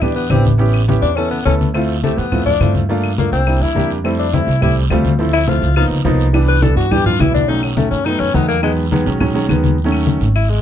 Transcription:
Already playing: upright bass E2
0.01 grand piano B3 D4 E4 G4, tenor saxophone D4, high conga, low conga, long guiro, claves
0.16 tenor saxophone B3, high conga
0.29 upright bass A1, grand piano B3 D4 E4 G4, tenor saxophone C4, high conga, short guiro, claves
0.45 high conga, short guiro
0.58 grand piano B3 C#4 E4 G4, high conga, long guiro
0.74 high conga, claves
0.88 grand piano B3 C#4 E4 G4, high conga, short guiro
1.02 upright bass E2, tenor saxophone D4, high conga, short guiro
1.16 grand piano B3 C#4 E4 A4, tenor saxophone C#4, high conga, long guiro, claves
1.31 tenor saxophone B3, high conga
1.45 upright bass D2, grand piano B3 C#4 E4 A4, tenor saxophone C#4, high conga, short guiro
1.61 high conga, short guiro
1.74 grand piano A3 C4 E4 F4, high conga, long guiro, claves
1.89 high conga
2.03 tenor saxophone A3, grand piano A3 C4 E4 G4, high conga, short guiro
2.17 upright bass F2, tenor saxophone B3, short guiro
2.31 grand piano A3 C4 E4 F4, high conga, low conga, long guiro, claves
2.46 tenor saxophone D4, high conga, low conga
2.60 upright bass G2, grand piano A3 C4 E4 F4, high conga, short guiro, claves
2.75 high conga, short guiro
2.89 grand piano A3 A#3 D4 F4, high conga, long guiro
3.04 high conga, claves
3.18 grand piano A3 A#3 D4 F4, tenor saxophone A#3, high conga, short guiro
3.32 upright bass C2, tenor saxophone C4, high conga, short guiro
3.46 grand piano G3 A#3 D4 E4, high conga, long guiro, claves
3.61 upright bass E2, tenor saxophone E4, high conga
3.75 upright bass F2, grand piano G3 A#3 D4 G4, high conga, short guiro
3.90 short guiro
4.04 grand piano G3 A3 C4 E4, high conga, long guiro, claves
4.19 tenor saxophone D4, high conga
4.33 grand piano G3 A3 C4 E4, tenor saxophone E4, high conga, short guiro
4.47 upright bass C2, high conga, short guiro
4.61 grand piano G3 A3 C4 G4, tenor saxophone E4, high conga, low conga, long guiro, claves
4.77 high conga
4.90 upright bass D2, grand piano G3 A3 C4 F4, high conga, short guiro, claves
5.05 high conga, short guiro
5.19 grand piano F3 A3 C4 E4, high conga, long guiro
5.33 tenor saxophone E4, high conga, claves
5.48 grand piano F3 A3 C4 E4, tenor saxophone F4, high conga, short guiro
5.62 upright bass C#2, short guiro
5.76 grand piano F3 A#3 B3 D#4, tenor saxophone F4, high conga, long guiro, claves
5.90 upright bass C#2, high conga
6.05 upright bass C2, grand piano F3 A#3 B3 D#4, high conga, short guiro
6.20 short guiro
6.33 grand piano E3 G3 B3 D4, high conga, long guiro, claves
6.48 tenor saxophone B4, high conga
6.62 grand piano E3 G3 B3 D4, tenor saxophone A4, high conga, short guiro
6.76 upright bass G2, tenor saxophone F#4, high conga, short guiro
6.91 grand piano E3 G3 B3 D4, tenor saxophone G4, high conga, low conga, long guiro, claves
7.06 tenor saxophone F4, high conga, low conga
7.19 upright bass B1, grand piano E3 G3 B3 E4, tenor saxophone E4, high conga, short guiro, claves
7.34 tenor saxophone D4, high conga, short guiro
7.47 grand piano D#3 F#3 A3 C#4, tenor saxophone D#4, high conga, long guiro
7.63 tenor saxophone F#3, high conga, claves
7.76 grand piano D#3 F#3 A3 C#4, tenor saxophone A3, high conga, short guiro
7.91 upright bass F#2, tenor saxophone C#4, short guiro
8.05 grand piano D#3 F#3 A3 B3, tenor saxophone D#4, high conga, long guiro, claves
8.20 upright bass F#2, tenor saxophone C#4, high conga
8.34 upright bass E2, grand piano D#3 F#3 A3 D#4, tenor saxophone B3, high conga, short guiro
8.48 tenor saxophone A#3, short guiro
8.62 grand piano D#3 F#3 G#3 B3, tenor saxophone G#3, high conga, long guiro, claves
8.78 high conga
8.91 grand piano D#3 F#3 G#3 B3, high conga, short guiro
9.05 upright bass B1, grand piano D#3 F#3 G#3 C#4, high conga, short guiro
9.19 grand piano D#3 F#3 G#3 C#4, high conga, low conga, long guiro, claves
9.34 grand piano D#3 F#3 G#3 C#4, high conga
9.49 upright bass D#2, grand piano D#3 F#3 G#3 B3, high conga, short guiro, claves
9.64 high conga, short guiro
9.78 high conga, long guiro
9.84 grand piano D#3 F#3 A3 C#4
9.92 high conga, claves
10.07 high conga, short guiro
10.20 upright bass G#1, high conga, short guiro
10.36 tenor saxophone E4, high conga, long guiro, claves
10.50 tenor saxophone G#3, high conga

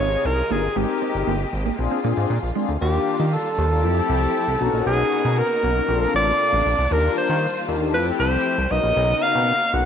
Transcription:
Already playing: string section C3 C#3 G#3 F4 D#5, alto saxophone C#5
0.00 analog synth bass G#1, analog polysynth C4 D#4 F4 G#4
0.25 analog synth bass C2, alto saxophone A#4
0.50 analog synth bass G1, clean electric guitar A#3, analog polysynth C4 D#4 F4 A#4, alto saxophone G#4
0.76 analog synth bass G#1, string section C3 A#3 G4, clean electric guitar G#3, analog polysynth C4 D#4 G4 A#4, alto saxophone G4
0.89 muted clean electric guitar stroke
1.02 clean electric guitar C4
1.15 analog synth bass G1
1.27 analog synth bass G1, clean electric guitar A#3
1.40 muted clean electric guitar stroke
1.53 analog synth bass G#1
1.66 clean electric guitar A#3
1.79 analog synth bass A#1, string section D3 F3 F4, analog polysynth C4 D4 F4 G#4, muted clean electric guitar stroke
1.91 clean electric guitar C4
2.04 analog synth bass A#2, clean electric guitar A#3, analog polysynth C4 D4 F4 G#4
2.17 analog synth bass G#2
2.30 analog synth bass A#2
2.43 analog synth bass A#1
2.55 clean electric guitar G#3, analog polysynth C4 D4 F4 G#4
2.68 analog synth bass D2
2.81 analog synth bass D#2, string section D#3 G3 A#3 D4 F4, analog polysynth A#3 D4 F4 F#4, alto saxophone G4
2.88 analog polysynth G4
3.20 analog synth bass D#3
3.33 alto saxophone A4
3.58 analog synth bass D#2, analog polysynth A#3 D4 F4 G4
3.71 analog polysynth A#3 D4 F4 A#4
3.83 analog synth bass F2, string section F3 A3 C4 E4 G4, analog polysynth C4 E4 G4 A4
4.09 analog synth bass C2
4.48 analog synth bass C2
4.60 analog synth bass B1, string section C#3 A#3 B3 D#4 F#4, analog polysynth C#4 D4 F#4 A#4
4.67 analog polysynth D#4
4.73 analog synth bass A#1
4.86 analog synth bass B1, alto saxophone G#4
5.25 analog synth bass B2
5.38 alto saxophone A#4
5.63 analog synth bass B1, analog polysynth C#4 D#4 F#4 A#4
5.76 analog polysynth C#4 D#4 F#4 A#4
5.88 analog synth bass A#1, string section C3 A3 D4 F4, analog polysynth C4 D4 F4 A4
6.14 analog synth bass A1, alto saxophone D5
6.53 analog synth bass A1
6.66 analog synth bass A#1
6.78 analog synth bass C2
6.91 analog synth bass D#2, string section D#3 G3 A#3 F4, analog polysynth D4 F4 G4 A#4, alto saxophone A#4
7.18 alto saxophone C5
7.29 analog synth bass D#3
7.68 analog synth bass D#2, analog polysynth D4 F4 G4 A#4
7.81 analog polysynth D4 F4 G4 A4
7.94 analog synth bass F2, string section F3 A3 C4 E4 G4, analog polysynth C4 E4 G4 A4, alto saxophone B4
8.19 analog synth bass C2, alto saxophone C5
8.58 analog synth bass C2
8.71 analog synth bass B1, string section C#3 A#3 B3 D#4 F#4, analog polysynth C#4 D#4 F#4 A#4, alto saxophone D#5
8.84 analog synth bass A#1
8.96 analog synth bass B1
9.22 alto saxophone F5
9.35 analog synth bass B2
9.73 analog synth bass B1, analog polysynth C#4 D#4 F#4 A#4, alto saxophone F#5

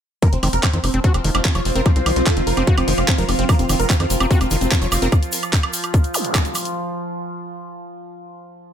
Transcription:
0.22 synth drone F3 F4, acid bass F3, ambient pad F4, supersaw synth A#4, kick, closed hi-hat
0.33 analog synth bass F1, supersaw synth C4, closed hi-hat
0.43 analog synth bass F1, acid bass D#3, supersaw synth C4, open hi-hat, high woodblock
0.51 analog synth bass F1, synth arpeggio sound C4, supersaw synth A#4, ambient pad C5, closed hi-hat
0.63 acid bass F3, supersaw synth C4, synth arpeggio sound C4, ambient pad C6, kick, clap, closed hi-hat, high woodblock
0.73 analog synth bass F2, acid bass D#3, supersaw synth C4, closed hi-hat
0.84 analog synth bass F1, supersaw synth C4, open hi-hat, high woodblock
0.94 analog synth bass F1, acid bass C4, closed hi-hat
1.04 supersaw synth C4, acid bass F#4, kick, closed hi-hat
1.14 analog synth bass F1, supersaw synth C4, closed hi-hat, high woodblock
1.24 analog synth bass F1, acid bass D#3, synth arpeggio sound D#4, open hi-hat
1.35 analog synth bass F1, supersaw synth C4, synth arpeggio sound D#4, closed hi-hat, high woodblock
1.45 acid bass F3, supersaw synth C4, kick, clap, closed hi-hat
1.55 analog synth bass F1, acid bass F3, supersaw synth C#5, closed hi-hat, high woodblock
1.65 analog synth bass F1, supersaw synth C4, open hi-hat
1.75 analog synth bass F1, acid bass C4, supersaw synth A#4, closed hi-hat
1.86 acid bass F3, supersaw synth C4, kick, closed hi-hat, high woodblock
1.96 analog synth bass C2, supersaw synth C4, closed hi-hat
2.06 analog synth bass C2, acid bass D#3, open hi-hat, high woodblock
2.16 analog synth bass C2, synth arpeggio sound A3, supersaw synth C4, closed hi-hat
2.26 acid bass F3, supersaw synth A4, kick, clap, closed hi-hat, high woodblock
2.37 analog synth bass F1, acid bass D#3, supersaw synth C4, closed hi-hat
2.47 analog synth bass F1, supersaw synth A#4, open hi-hat
2.57 analog synth bass F1, acid bass C4, supersaw synth C4, closed hi-hat, high woodblock
2.67 acid bass F#4, kick, closed hi-hat
2.78 analog synth bass F1, supersaw synth C4, closed hi-hat, high woodblock
2.88 analog synth bass F1, acid bass D#3, supersaw synth C5, open hi-hat
2.98 analog synth bass F1, supersaw synth C4, closed hi-hat, high woodblock
3.08 acid bass F3, supersaw synth C4, kick, clap, closed hi-hat
3.18 analog synth bass F1, acid bass F3, supersaw synth A#4, closed hi-hat
3.28 analog synth bass F1, supersaw synth C4, ambient pad A#5, open hi-hat, high woodblock
3.39 analog synth bass F1, supersaw synth C4, acid bass C4, closed hi-hat
3.49 acid bass F3, supersaw synth A#4, kick, closed hi-hat, high woodblock, shaker
3.59 analog synth bass F1, supersaw synth C4, closed hi-hat, shaker
3.69 analog synth bass F1, acid bass D#3, supersaw synth C4, open hi-hat, high woodblock, shaker
3.80 analog synth bass F1, synth arpeggio sound C4, supersaw synth A#4, closed hi-hat, shaker
3.90 acid bass F3, supersaw synth C4, synth arpeggio sound C4, kick, clap, closed hi-hat, shaker
4.00 analog synth bass F2, acid bass D#3, supersaw synth C4, closed hi-hat, high woodblock
4.10 analog synth bass F1, supersaw synth C4, open hi-hat, shaker
4.20 analog synth bass F1, acid bass C4, closed hi-hat, high woodblock, shaker
4.31 supersaw synth C4, acid bass F#4, kick, closed hi-hat, shaker
4.41 analog synth bass F1, supersaw synth C4, closed hi-hat, high woodblock, shaker
4.51 analog synth bass F1, acid bass D#3, open hi-hat, shaker
4.61 analog synth bass F1, supersaw synth C4, closed hi-hat, shaker
4.71 acid bass F3, supersaw synth C4, kick, clap, closed hi-hat, high woodblock, shaker
4.82 analog synth bass F1, acid bass F3, supersaw synth C#5, closed hi-hat, shaker
4.92 analog synth bass F1, supersaw synth C4, synth arpeggio sound F4, open hi-hat, high woodblock, shaker
5.02 analog synth bass F1, acid bass C4, synth arpeggio sound F4, supersaw synth A#4, closed hi-hat, shaker
5.12 kick, closed hi-hat, high woodblock, shaker
5.23 closed hi-hat, shaker
5.32 open hi-hat, shaker
5.43 closed hi-hat, high woodblock, shaker
5.53 kick, clap, closed hi-hat, shaker
5.63 closed hi-hat, high woodblock
5.73 open hi-hat, shaker
5.83 closed hi-hat, high woodblock, shaker
5.94 kick, closed hi-hat, shaker
6.04 closed hi-hat, shaker
6.14 open hi-hat, zap, high woodblock, shaker
6.25 closed hi-hat
6.35 kick, clap, closed hi-hat, high woodblock, shaker
6.45 closed hi-hat, shaker
6.55 open hi-hat, high woodblock, shaker
6.65 closed hi-hat, shaker

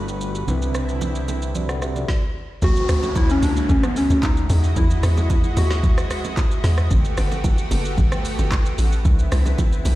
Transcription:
Already playing: analog synth bass G1, tine electric piano G3 D4 F#4 A4 B4, analog synth pad G3 A3 F#4 B4
0.08 shaker
0.21 shaker
0.35 shaker
0.46 analog synth bass C2, tine electric piano C3 C4 D4 E4 B4, analog synth pad D3 C4 E4, low conga, shaker
0.62 shaker
0.75 cross-stick, shaker
0.89 shaker
1.01 high bongo, low conga, shaker
1.15 shaker
1.28 low bongo, shaker
1.42 shaker
1.55 tine electric piano F#4 D5, low conga, shaker
1.69 tine electric piano A4 F#5, cross-stick, shaker
1.82 tine electric piano G4 E5, cross-stick, shaker
1.96 tine electric piano F#4 D5, low bongo, shaker
2.08 kick, snare
2.62 log drum bass D2, analog synth pad D3 F#3 C#4 E4, soft synth lead F#4, kick, downlifter, low conga, shaker
2.76 shaker
2.89 log drum bass D2, cross-stick, open hi-hat, shaker
3.03 low bongo, shaker
3.16 soft synth lead E4, kick, high bongo, low conga, shaker
3.30 soft synth lead C#4, shaker
3.42 log drum bass C#2, soft synth lead D4, open hi-hat, high bongo, low bongo, shaker
3.57 shaker
3.69 log drum bass D2, soft synth lead C#4, kick, low conga, shaker
3.83 soft synth lead B3, cross-stick, shaker
3.96 soft synth lead C#4, open hi-hat, shaker
4.10 log drum bass D2, low bongo, shaker
4.23 soft synth lead D#4, kick, clap, high bongo, shaker
4.37 shaker
4.50 log drum bass E2, analog synth pad G#3 E4 F#4 D#5, open hi-hat, shaker
4.64 shaker
4.76 log drum bass E2, soft synth lead E4, kick, low conga, shaker
4.90 shaker
5.03 log drum bass E2, cross-stick, open hi-hat, shaker
5.17 low bongo, shaker
5.30 kick, high bongo, low conga, shaker
5.44 shaker
5.57 log drum bass D#2, soft synth lead F#4, open hi-hat, high bongo, low bongo, shaker
5.71 snare, shaker
5.83 kick, low conga, shaker
5.98 cross-stick, shaker
6.11 cross-stick, open hi-hat, shaker
6.25 low bongo, shaker
6.37 kick, clap, high bongo, shaker
6.51 shaker
6.64 log drum bass E2, snare, open hi-hat, shaker
6.78 cross-stick, shaker
6.91 log drum bass G1, analog synth pad A3 B3 F#4 G4, kick, low conga, shaker
7.05 shaker
7.17 log drum bass G1, cross-stick, open hi-hat, shaker
7.32 low bongo, shaker
7.44 kick, high bongo, low conga, shaker
7.58 shaker
7.71 log drum bass F#1, open hi-hat, high bongo, low bongo, shaker
7.85 shaker
7.98 log drum bass G1, kick, low conga, shaker
8.12 cross-stick, shaker
8.25 open hi-hat, shaker
8.39 log drum bass G1, low bongo, shaker
8.51 kick, clap, high bongo, shaker
8.66 shaker
8.78 log drum bass A1, open hi-hat, shaker
8.92 shaker
9.05 log drum bass C2, analog synth pad D3 C4 E4, kick, low conga, shaker
9.19 shaker
9.32 log drum bass C2, cross-stick, open hi-hat, shaker
9.46 low bongo, shaker
9.58 kick, high bongo, low conga, shaker
9.72 shaker
9.85 log drum bass B1, open hi-hat, high bongo, low bongo, shaker

